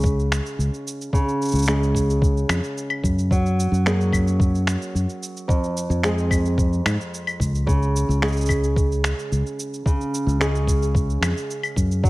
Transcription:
Already playing: fingered electric bass C#2, nylon-string guitar C#3 G#3 C#4 G#4
0.01 cabasa
0.03 kick, cabasa
0.05 cabasa
0.19 cabasa
0.32 finger snap, cabasa
0.46 cabasa
0.59 fingered electric bass C#2, cabasa
0.74 cabasa
0.87 cabasa
1.01 cabasa
1.13 nylon-string guitar C#3, kick, cabasa
1.28 cabasa
1.42 cabasa
1.45 cabasa
1.48 cabasa
1.51 fingered electric bass C#2, cabasa
1.55 cabasa
1.58 cabasa
1.62 cabasa
1.65 nylon-string guitar G#3 C#4 G#4, finger snap, cabasa
1.83 cabasa
1.95 kick, cabasa
2.10 cabasa
2.22 kick, cabasa
2.37 cabasa
2.49 fingered electric bass F2, finger snap, cabasa, claves
2.64 cabasa
2.78 cabasa
2.90 claves
3.04 fingered electric bass F#2, kick, cabasa
3.18 cabasa
3.31 nylon-string guitar F#3, kick, cabasa
3.46 cabasa
3.60 cabasa
3.72 fingered electric bass F#2, cabasa
3.86 nylon-string guitar A#3 C#4 G#4, finger snap, cabasa
4.01 cabasa
4.13 kick, cabasa, claves
4.27 cabasa
4.40 kick, cabasa
4.55 cabasa
4.67 finger snap, cabasa
4.82 cabasa
4.95 fingered electric bass F#2, cabasa
5.09 cabasa
5.23 cabasa
5.37 cabasa
5.48 nylon-string guitar F2, kick, cabasa
5.64 cabasa
5.77 cabasa
5.90 fingered electric bass F2, cabasa
6.03 nylon-string guitar G#3 C4 G#4, finger snap, cabasa
6.18 cabasa
6.31 kick, cabasa, claves
6.45 cabasa
6.58 kick, cabasa
6.73 cabasa
6.86 fingered electric bass G#2, finger snap, cabasa, claves
7.01 cabasa
7.14 cabasa
7.27 cabasa, claves
7.40 fingered electric bass C#2, kick, cabasa
7.55 cabasa
7.67 nylon-string guitar C#3, kick, cabasa
7.82 cabasa
7.96 cabasa
8.09 fingered electric bass C#2, cabasa
8.22 nylon-string guitar G#3 C#4 G#4, finger snap, cabasa
8.28 cabasa
8.32 cabasa
8.36 cabasa
8.41 cabasa
8.46 kick, cabasa, claves
8.50 cabasa
8.64 cabasa
8.76 kick, cabasa
8.92 cabasa
9.04 finger snap, cabasa
9.19 cabasa
9.32 fingered electric bass C#2, cabasa
9.46 cabasa
9.59 cabasa
9.74 cabasa
9.86 nylon-string guitar C#3, kick, cabasa
10.01 cabasa
10.14 cabasa
10.27 fingered electric bass C#2, cabasa
10.40 nylon-string guitar G#3 C#4 G#4, finger snap, cabasa
10.55 cabasa
10.68 kick, cabasa
10.82 cabasa
10.95 kick, cabasa
11.10 cabasa
11.21 fingered electric bass F2, finger snap, cabasa, claves
11.37 cabasa
11.51 cabasa
11.63 cabasa, claves
11.76 fingered electric bass F#2, kick, cabasa
11.91 cabasa
12.03 nylon-string guitar F#3, kick, cabasa

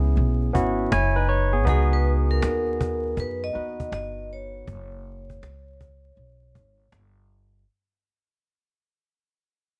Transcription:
Already playing: upright bass C#2, tine electric piano B3 C#4 E4 G#4
0.05 cajon slap
0.16 upright bass B1, cajon slap
0.42 cajon slap
0.53 upright bass G#1, tine electric piano B3 C#4 E4 F#4, cajon bass
0.79 cajon slap
0.92 upright bass F#1, tine electric piano E4 C#5 G#5, cajon slap
1.16 tine electric piano D#4 B4, cajon slap
1.29 tine electric piano C#5, cajon slap
1.53 tine electric piano B3 G#4, cajon slap
1.65 upright bass C#2, tine electric piano B3 D#4 F#4, cajon bass
1.69 tine electric piano G#4, vibraphone G#4
1.92 vibraphone B4, cajon slap
2.04 cajon slap
2.30 vibraphone A#4, cajon slap
2.42 upright bass D#2, cajon slap
2.66 cajon slap
2.81 cajon bass
3.05 cajon slap
3.17 upright bass F#2, vibraphone B4, cajon bass, cajon slap
3.43 vibraphone D#5, cajon slap
3.53 upright bass D#2, tine electric piano B3 D#4 F#4 B4, cajon slap
3.80 cajon bass
3.92 upright bass G1, vibraphone D#5, cajon slap
4.18 cajon slap
4.31 vibraphone C#5, cajon slap
4.55 cajon slap
4.67 upright bass F#1, cajon bass
4.92 cajon slap
5.04 cajon slap
5.30 cajon bass
5.42 upright bass C#2, cajon slap
5.66 cajon slap
5.81 cajon bass
6.05 cajon slap
6.16 upright bass B1, cajon slap
6.43 cajon slap
6.55 upright bass G#1, cajon bass
6.79 cajon slap
6.92 upright bass G1, cajon slap
7.17 cajon slap
7.30 cajon slap
7.54 cajon slap

